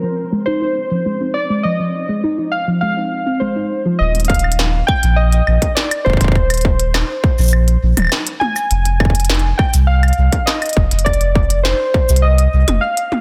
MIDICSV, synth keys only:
0, 0, Header, 1, 2, 480
1, 0, Start_track
1, 0, Tempo, 588235
1, 1345, Time_signature, 4, 2, 24, 8
1, 10777, End_track
2, 0, Start_track
2, 0, Title_t, "Synth keys"
2, 0, Program_c, 0, 88
2, 0, Note_on_c, 0, 70, 83
2, 346, Note_off_c, 0, 70, 0
2, 372, Note_on_c, 0, 72, 90
2, 1092, Note_on_c, 0, 74, 101
2, 1121, Note_off_c, 0, 72, 0
2, 1333, Note_on_c, 0, 75, 98
2, 1346, Note_off_c, 0, 74, 0
2, 1786, Note_off_c, 0, 75, 0
2, 2053, Note_on_c, 0, 77, 98
2, 2163, Note_off_c, 0, 77, 0
2, 2293, Note_on_c, 0, 77, 103
2, 2773, Note_on_c, 0, 72, 82
2, 2986, Note_off_c, 0, 77, 0
2, 3253, Note_on_c, 0, 75, 101
2, 3274, Note_off_c, 0, 72, 0
2, 3364, Note_off_c, 0, 75, 0
2, 3492, Note_on_c, 0, 77, 107
2, 3946, Note_off_c, 0, 77, 0
2, 3973, Note_on_c, 0, 79, 106
2, 4213, Note_on_c, 0, 75, 106
2, 4226, Note_off_c, 0, 79, 0
2, 4667, Note_off_c, 0, 75, 0
2, 4693, Note_on_c, 0, 74, 92
2, 4933, Note_on_c, 0, 72, 87
2, 4947, Note_off_c, 0, 74, 0
2, 6347, Note_off_c, 0, 72, 0
2, 6854, Note_on_c, 0, 80, 96
2, 7814, Note_on_c, 0, 79, 90
2, 7848, Note_off_c, 0, 80, 0
2, 7924, Note_off_c, 0, 79, 0
2, 8054, Note_on_c, 0, 77, 97
2, 8534, Note_on_c, 0, 75, 90
2, 8554, Note_off_c, 0, 77, 0
2, 9013, Note_on_c, 0, 74, 95
2, 9034, Note_off_c, 0, 75, 0
2, 9467, Note_off_c, 0, 74, 0
2, 9493, Note_on_c, 0, 72, 92
2, 9973, Note_on_c, 0, 75, 102
2, 9994, Note_off_c, 0, 72, 0
2, 10452, Note_on_c, 0, 77, 97
2, 10474, Note_off_c, 0, 75, 0
2, 10777, Note_off_c, 0, 77, 0
2, 10777, End_track
0, 0, End_of_file